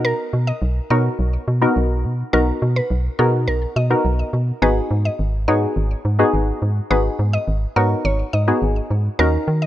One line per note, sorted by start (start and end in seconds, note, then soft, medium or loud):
0.00 0.13 B2 loud
0.00 0.68 B3 loud
0.00 0.68 D#4 medium
0.00 0.68 F#4 medium
0.00 0.68 A#4 loud
0.05 0.29 A#4 loud
0.33 0.52 B2 loud
0.47 0.72 D#5 medium
0.62 0.80 B1 loud
0.90 1.09 B2 loud
0.90 1.42 B3 medium
0.90 1.42 D#4 medium
0.90 1.42 F#4 medium
0.90 1.42 A#4 medium
0.90 1.03 C#5 medium
1.19 1.38 B1 loud
1.48 1.66 B2 loud
1.62 2.13 B3 loud
1.62 2.13 D#4 medium
1.62 2.13 F#4 medium
1.62 2.13 A#4 loud
1.76 2.06 B1 loud
2.05 2.23 B2 loud
2.33 2.52 B1 loud
2.33 2.95 B3 medium
2.33 2.95 D#4 medium
2.33 2.95 F#4 medium
2.33 2.58 A#4 loud
2.33 2.95 A#4 medium
2.62 2.81 B2 loud
2.76 3.01 B4 medium
2.91 3.09 B1 loud
3.19 3.49 B2 loud
3.19 3.70 B3 medium
3.19 3.70 D#4 medium
3.19 3.70 F#4 medium
3.19 3.31 G#4 medium
3.19 3.71 A#4 medium
3.48 3.66 B1 loud
3.48 3.72 A#4 medium
3.76 3.95 B2 loud
3.76 3.89 D#5 medium
3.90 4.42 B3 medium
3.90 4.42 D#4 medium
3.90 4.42 F#4 medium
3.90 4.42 A#4 medium
4.05 4.23 B1 loud
4.33 4.52 B2 loud
4.62 4.81 G#1 loud
4.62 5.24 B3 medium
4.62 5.24 D#4 medium
4.62 5.24 F#4 medium
4.62 5.24 G#4 loud
4.62 4.87 B4 loud
4.91 5.09 G#2 loud
5.05 5.30 D#5 medium
5.19 5.49 G#1 loud
5.48 5.66 G#2 loud
5.48 5.99 B3 medium
5.48 5.99 D#4 medium
5.48 5.99 F#4 medium
5.48 5.99 G#4 medium
5.48 5.60 C#5 medium
5.76 5.95 G#1 loud
6.05 6.24 G#2 loud
6.19 6.70 B3 loud
6.19 6.70 D#4 medium
6.19 6.71 F#4 medium
6.19 6.71 G#4 loud
6.34 6.52 G#1 loud
6.62 6.81 G#2 loud
6.90 7.09 G#1 loud
6.90 7.52 B3 medium
6.90 7.52 D#4 medium
6.90 7.52 F#4 medium
6.90 7.52 G#4 medium
6.90 7.15 B4 loud
7.19 7.38 G#2 loud
7.33 7.58 D#5 medium
7.48 7.66 G#1 loud
7.76 7.95 G#2 loud
7.76 8.28 B3 medium
7.76 8.28 D#4 medium
7.76 8.28 F#4 medium
7.76 8.28 A#4 loud
7.76 7.89 C#5 medium
8.05 8.23 G#1 loud
8.05 8.30 C#5 medium
8.33 8.52 G#2 loud
8.33 8.46 D#5 medium
8.48 8.99 B3 medium
8.48 8.99 D#4 medium
8.48 8.99 F#4 medium
8.48 8.99 G#4 medium
8.62 8.81 G#1 loud
8.91 9.09 G#2 loud
9.19 9.38 D#2 loud
9.19 9.66 C#4 medium
9.19 9.66 D#4 medium
9.19 9.66 F#4 medium
9.19 9.44 A#4 loud
9.19 9.66 A#4 loud
9.48 9.66 D#3 loud
9.62 9.66 D#5 medium